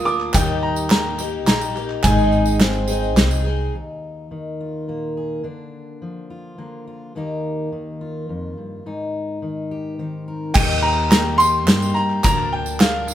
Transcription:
Already playing: upright bass D2, french horn F4
0.05 twelve-string acoustic guitar A#3 D4 A#4, upright piano D6, clap, tambourine
0.20 clap
0.33 upright bass D#2, twelve-string acoustic guitar D#3 G3 A#3 D#4 G4, french horn D#4, upright piano G5, kick, clap, closed hi-hat, tambourine
0.47 clap
0.63 upright piano A#5
0.76 tambourine
0.90 twelve-string acoustic guitar G3 A#3 D#4 G4, upright piano A#5, snare, clap, closed hi-hat
1.19 twelve-string acoustic guitar A#3 D#4 G4, clap, tambourine
1.47 upright bass A#1, twelve-string acoustic guitar G3 A#3 D#4 G4, upright piano A#5, snare, clap, closed hi-hat
1.61 tambourine
1.75 twelve-string acoustic guitar A#3 D#4 G4, clap, tambourine
1.90 clap
2.03 upright bass G#1, twelve-string acoustic guitar G#2 D#3 G#3 C4 D#4 G#4, french horn D#4, upright piano G#5, kick, clap, closed hi-hat, tambourine
2.18 tambourine
2.32 clap, tambourine
2.46 tambourine
2.60 twelve-string acoustic guitar G#3 C4 D#4 G#4, french horn C4, snare, clap, closed hi-hat
2.74 tambourine
2.88 twelve-string acoustic guitar G#3 C4 D#4 G#4, tambourine
3.03 tambourine
3.16 upright bass C2, twelve-string acoustic guitar G#3 C4 D#4 G#4, snare, clap, closed hi-hat
3.31 clap, tambourine
3.44 twelve-string acoustic guitar G#3 C4 D#4 G#4
3.74 steel-string acoustic guitar D#2 D#4
4.31 steel-string acoustic guitar D#3
4.60 steel-string acoustic guitar F4
4.88 steel-string acoustic guitar A#2 A#3
5.17 steel-string acoustic guitar G#4
5.43 steel-string acoustic guitar D3 D4
6.02 steel-string acoustic guitar F3
6.30 steel-string acoustic guitar F4
6.58 steel-string acoustic guitar D3 A#3
6.87 steel-string acoustic guitar F4
7.15 steel-string acoustic guitar D#2 D#3 A#3 D#4 G4
7.72 steel-string acoustic guitar D#3
8.01 steel-string acoustic guitar F4
8.29 steel-string acoustic guitar F2
8.57 steel-string acoustic guitar G2
8.86 steel-string acoustic guitar G#2 D#4
9.42 steel-string acoustic guitar D#3
9.71 steel-string acoustic guitar G4
9.99 steel-string acoustic guitar D#3 C4
10.28 steel-string acoustic guitar A#4
10.54 upright bass D#2, twelve-string acoustic guitar D#3 G3 A#3 D#4 G4, upright piano G5, kick, clap, crash, tambourine
10.69 clap
10.82 upright piano A#5
11.10 twelve-string acoustic guitar G3 A#3 D#4, upright piano A#5, snare, clap, closed hi-hat
11.14 twelve-string acoustic guitar G4
11.38 upright piano C6, clap, tambourine
11.67 upright bass G2, twelve-string acoustic guitar G3 A#3 D#4 G4, snare, clap, closed hi-hat
11.82 tambourine
11.94 upright piano A#5, clap, tambourine
12.10 clap
12.23 upright bass D2, twelve-string acoustic guitar D3 F3 A#3 D4 A#4, upright piano A#5, kick, clap, closed hi-hat, tambourine
12.38 clap
12.52 upright piano G5
12.66 tambourine
12.80 twelve-string acoustic guitar F3 A#3 D4 A#4, upright piano F5, snare, clap, closed hi-hat
13.08 clap, tambourine

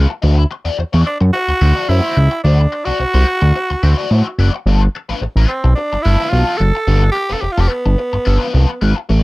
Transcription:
0.10 muted overdriven electric guitar stroke
0.22 analog synth bass D2, overdriven electric guitar E4 F#4 C5
0.37 muted overdriven electric guitar stroke
0.51 muted overdriven electric guitar stroke
0.65 analog synth bass E2, overdriven electric guitar E4 F#4 D5
0.78 analog synth bass E2, muted overdriven electric guitar stroke
0.93 analog synth bass E2, overdriven electric guitar E4 F#4 D5
1.06 tenor saxophone D4, muted overdriven electric guitar stroke
1.20 analog synth bass F#2, muted overdriven electric guitar stroke
1.33 tenor saxophone F#4, muted overdriven electric guitar stroke
1.48 analog synth bass D2, muted overdriven electric guitar stroke
1.61 analog synth bass D2, overdriven electric guitar E4 F#4 C5
1.76 overdriven electric guitar E4 F#4 D5
1.89 analog synth bass F#2, overdriven electric guitar E4 F#4 C5, tenor saxophone E4
2.17 analog synth bass C#2, muted overdriven electric guitar stroke
2.31 muted overdriven electric guitar stroke
2.44 analog synth bass D2, tenor saxophone D4, overdriven electric guitar E4 F#4 C5
2.59 muted overdriven electric guitar stroke
2.72 muted overdriven electric guitar stroke
2.85 analog synth bass C2, overdriven electric guitar E4 F#4 D5, tenor saxophone F#4
2.99 analog synth bass C2, muted overdriven electric guitar stroke
3.14 analog synth bass C2, overdriven electric guitar E4 F#4 C5
3.27 muted overdriven electric guitar stroke
3.41 analog synth bass D2, muted overdriven electric guitar stroke
3.55 muted overdriven electric guitar stroke
3.70 analog synth bass D2, muted overdriven electric guitar stroke
3.83 analog synth bass D2, overdriven electric guitar E4 F#4 C5
3.98 overdriven electric guitar E4 F#4 D5
4.11 analog synth bass A2, overdriven electric guitar E4 F#4 C5
4.26 muted overdriven electric guitar stroke
4.38 analog synth bass F#1, overdriven electric guitar E4 F#4 D5
4.54 muted overdriven electric guitar stroke
4.66 analog synth bass G1, overdriven electric guitar B3 F4 A4
4.82 muted overdriven electric guitar stroke
4.95 muted overdriven electric guitar stroke
5.09 analog synth bass A1, overdriven electric guitar B3 F4 B4
5.21 analog synth bass A1, muted overdriven electric guitar stroke
5.36 analog synth bass A1, overdriven electric guitar B3 F4 B4
5.49 tenor saxophone C4, muted overdriven electric guitar stroke
5.64 analog synth bass B1, muted overdriven electric guitar stroke
5.75 tenor saxophone D4, muted overdriven electric guitar stroke
5.92 analog synth bass G1, muted overdriven electric guitar stroke
6.02 analog synth bass G1, overdriven electric guitar B3 F4, tenor saxophone E4
6.07 overdriven electric guitar A4
6.20 overdriven electric guitar B3 F4 B4
6.30 analog synth bass B1, overdriven electric guitar B3, tenor saxophone F4
6.34 overdriven electric guitar F4 A4
6.57 analog synth bass F#1, tenor saxophone A4, muted overdriven electric guitar stroke
6.75 muted overdriven electric guitar stroke
6.87 analog synth bass G1, overdriven electric guitar B3 F4 A4
7.02 muted overdriven electric guitar stroke
7.12 tenor saxophone G4, muted overdriven electric guitar stroke
7.29 analog synth bass F1, overdriven electric guitar B3 F4 B4, tenor saxophone A4
7.41 analog synth bass F1, tenor saxophone G4, muted overdriven electric guitar stroke
7.52 tenor saxophone F4
7.57 analog synth bass F1, overdriven electric guitar B3 F4 A4, tenor saxophone G4
7.68 tenor saxophone B3, muted overdriven electric guitar stroke
7.85 analog synth bass G1, muted overdriven electric guitar stroke
7.98 muted overdriven electric guitar stroke
8.13 analog synth bass G1, muted overdriven electric guitar stroke
8.25 analog synth bass G1, overdriven electric guitar B3 F4 A4
8.40 overdriven electric guitar B3 F4 B4
8.54 analog synth bass C2, overdriven electric guitar B3 F4 A4
8.69 muted overdriven electric guitar stroke
8.81 analog synth bass G#1, overdriven electric guitar B3 F4 B4
8.96 muted overdriven electric guitar stroke
9.09 analog synth bass A1, overdriven electric guitar C#4 G4 B4

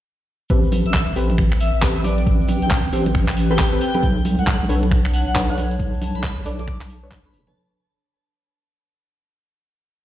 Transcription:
0.50 wobble bass A1, ambient pad C4, synth stab C4 G4 A4 B4, kick, closed hi-hat, shaker
0.64 shaker
0.72 open hi-hat, high conga, shaker
0.85 wobble bass A1, digital synth lead E5, closed hi-hat, shaker
0.94 digital synth lead E5, kick, clap, shaker
1.08 wobble bass A1, closed hi-hat, shaker
1.12 ambient pad B4
1.16 wobble bass A1, synth stab C4 G4 A4 B4, open hi-hat, shaker
1.30 closed hi-hat, high conga, shaker
1.38 finger snap, kick, closed hi-hat, shaker
1.52 finger snap, shaker
1.56 ambient pad G5
1.60 digital synth lead E5, open hi-hat, shaker
1.74 wobble bass A1, digital synth lead E5, shaker
1.82 synth stab C4 G4 A4 B4, kick, clap, shaker
1.96 synth stab C4 G4 A4 B4, digital synth lead E5, closed hi-hat, shaker
2.04 digital synth lead D5, open hi-hat, high conga, shaker
2.18 closed hi-hat, shaker
2.26 wobble bass A1, kick, closed hi-hat, shaker
2.40 shaker
2.48 open hi-hat, high conga, shaker
2.62 wobble bass A1, digital synth lead G5, closed hi-hat, shaker
2.71 kick, clap, shaker
2.84 wobble bass A1, closed hi-hat, shaker
2.93 wobble bass A1, synth stab C4 G4 A4 C5, open hi-hat, shaker
3.06 closed hi-hat, high conga, shaker
3.15 finger snap, kick, closed hi-hat, shaker
3.28 wobble bass A1, finger snap, clap, shaker
3.37 open hi-hat, shaker
3.50 synth stab C4 G4 A4 B4, digital synth lead G5, shaker
3.58 kick, clap, shaker
3.72 synth stab C4 G4 A4 B4, closed hi-hat, shaker
3.81 digital synth lead G5, open hi-hat, shaker
3.95 synth stab C4 G4 A4 B4, closed hi-hat, high conga, shaker
4.03 wobble bass B1, ambient pad D4, kick, closed hi-hat, shaker
4.17 shaker
4.25 open hi-hat, high conga, shaker
4.39 wobble bass B1, digital synth lead F#5, closed hi-hat, shaker
4.43 ambient pad C#5
4.47 digital synth lead F#5, kick, clap, shaker
4.61 wobble bass B1, closed hi-hat, shaker
4.69 wobble bass B1, synth stab D4 A4 B4 C#5, open hi-hat, shaker
4.83 closed hi-hat, high conga, shaker
4.91 finger snap, kick, closed hi-hat, shaker
5.05 finger snap, shaker
5.13 digital synth lead F#5, open hi-hat, shaker
5.21 ambient pad A5
5.27 wobble bass B1, digital synth lead F#5, shaker
5.35 synth stab D4 A4 B4 C#5, kick, clap, shaker
5.49 synth stab D4 A4 B4 C#5, digital synth lead F#5, closed hi-hat, shaker
5.57 open hi-hat, high conga, shaker
5.71 closed hi-hat, shaker
5.79 wobble bass B1, kick, closed hi-hat, shaker
5.93 shaker
6.02 open hi-hat, high conga, shaker
6.15 wobble bass B1, digital synth lead B5, closed hi-hat, shaker
6.23 kick, clap, shaker
6.37 wobble bass B1, closed hi-hat, shaker
6.45 wobble bass B1, synth stab D4 A4 B4 D5, open hi-hat, shaker
6.59 digital synth lead D6, closed hi-hat, high conga, shaker
6.68 digital synth lead D6, finger snap, kick, closed hi-hat
6.81 wobble bass B1, finger snap, clap, shaker
6.90 open hi-hat, shaker
7.03 synth stab D4 A4 B4 C#5, shaker
7.11 wobble bass B1, kick, clap, shaker
7.25 wobble bass B1, synth stab D4 A4 B4 C#5, digital synth lead B5, closed hi-hat, shaker
7.33 wobble bass F#1, digital synth lead B5, open hi-hat, shaker
7.47 synth stab D4 A4 B4 C#5, digital synth lead A5, closed hi-hat, high conga, shaker

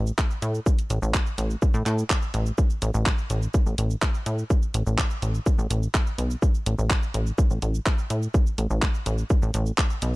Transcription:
Already playing: analog synth bass A1
0.07 shaker
0.18 kick, clap, shaker
0.31 shaker
0.42 analog synth bass A2, closed hi-hat, shaker
0.55 shaker
0.66 kick, shaker
0.79 closed hi-hat, shaker
0.90 analog synth bass A1, closed hi-hat, shaker
1.02 analog synth bass A1, shaker
1.14 kick, clap, shaker
1.26 shaker
1.38 analog synth bass A1, closed hi-hat, shaker
1.50 shaker
1.62 kick, shaker
1.74 analog synth bass A2, shaker
1.86 analog synth bass A2, clap, closed hi-hat, shaker
1.98 shaker
2.10 kick, clap, shaker
2.22 shaker
2.34 analog synth bass A1, closed hi-hat, shaker
2.46 shaker
2.58 kick, shaker
2.70 shaker
2.82 analog synth bass A1, closed hi-hat, shaker
2.94 analog synth bass A1, shaker
3.06 kick, clap, shaker
3.18 shaker
3.30 analog synth bass A1, closed hi-hat, shaker
3.42 shaker
3.54 kick, shaker
3.66 analog synth bass A1, shaker
3.78 analog synth bass A1, closed hi-hat, shaker
3.90 shaker
4.02 kick, clap, shaker
4.14 shaker
4.26 analog synth bass A2, closed hi-hat, shaker
4.38 shaker
4.50 kick, shaker
4.62 shaker
4.74 analog synth bass A1, closed hi-hat, shaker
4.87 analog synth bass A1, shaker
4.98 kick, clap, shaker
5.10 shaker
5.22 analog synth bass A1, closed hi-hat, shaker
5.35 shaker
5.46 kick, shaker
5.58 analog synth bass A1, shaker
5.70 analog synth bass A1, closed hi-hat, shaker
5.83 shaker
5.94 kick, clap, shaker
6.07 shaker
6.18 analog synth bass B1, closed hi-hat, shaker
6.31 shaker
6.42 kick, shaker
6.55 shaker
6.66 analog synth bass A1, closed hi-hat, shaker
6.79 analog synth bass A1, shaker
6.90 kick, clap, shaker
7.03 shaker
7.14 analog synth bass A1, closed hi-hat, shaker
7.26 shaker
7.38 kick, shaker
7.50 analog synth bass A1, shaker
7.62 analog synth bass A1, closed hi-hat, shaker
7.74 shaker
7.86 kick, clap, shaker
7.98 shaker
8.10 analog synth bass A2, closed hi-hat, shaker
8.22 shaker
8.34 kick, shaker
8.46 shaker
8.58 analog synth bass A1, closed hi-hat, shaker
8.70 analog synth bass A1, shaker
8.82 kick, clap, shaker
8.94 shaker
9.06 analog synth bass A1, closed hi-hat, shaker
9.18 shaker
9.30 kick, shaker
9.42 analog synth bass A1, shaker
9.54 analog synth bass A1, closed hi-hat, shaker
9.66 shaker
9.78 kick, clap, shaker
9.90 shaker
10.02 analog synth bass B1, closed hi-hat, shaker

